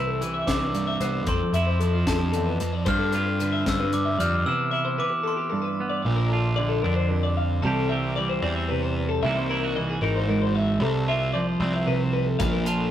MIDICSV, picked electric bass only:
0, 0, Header, 1, 2, 480
1, 0, Start_track
1, 0, Key_signature, 0, "major"
1, 0, Tempo, 530504
1, 1150, Time_signature, 6, 3, 24, 8
1, 11679, End_track
2, 0, Start_track
2, 0, Title_t, "Picked electric bass"
2, 0, Program_c, 0, 34
2, 0, Note_on_c, 0, 36, 86
2, 393, Note_off_c, 0, 36, 0
2, 427, Note_on_c, 0, 36, 85
2, 873, Note_off_c, 0, 36, 0
2, 908, Note_on_c, 0, 36, 65
2, 1146, Note_off_c, 0, 36, 0
2, 1146, Note_on_c, 0, 41, 78
2, 1259, Note_off_c, 0, 41, 0
2, 1380, Note_on_c, 0, 41, 86
2, 1831, Note_off_c, 0, 41, 0
2, 1871, Note_on_c, 0, 41, 84
2, 2317, Note_off_c, 0, 41, 0
2, 2355, Note_on_c, 0, 41, 72
2, 2577, Note_off_c, 0, 41, 0
2, 2592, Note_on_c, 0, 43, 91
2, 3278, Note_off_c, 0, 43, 0
2, 3317, Note_on_c, 0, 43, 80
2, 3761, Note_off_c, 0, 43, 0
2, 3787, Note_on_c, 0, 41, 75
2, 4013, Note_off_c, 0, 41, 0
2, 5472, Note_on_c, 0, 34, 90
2, 6157, Note_off_c, 0, 34, 0
2, 6189, Note_on_c, 0, 41, 78
2, 6875, Note_off_c, 0, 41, 0
2, 6900, Note_on_c, 0, 36, 96
2, 7589, Note_off_c, 0, 36, 0
2, 7619, Note_on_c, 0, 40, 88
2, 8307, Note_off_c, 0, 40, 0
2, 8346, Note_on_c, 0, 36, 95
2, 9030, Note_off_c, 0, 36, 0
2, 9058, Note_on_c, 0, 32, 89
2, 9745, Note_off_c, 0, 32, 0
2, 9768, Note_on_c, 0, 36, 91
2, 10459, Note_off_c, 0, 36, 0
2, 10495, Note_on_c, 0, 36, 94
2, 11182, Note_off_c, 0, 36, 0
2, 11221, Note_on_c, 0, 34, 89
2, 11679, Note_off_c, 0, 34, 0
2, 11679, End_track
0, 0, End_of_file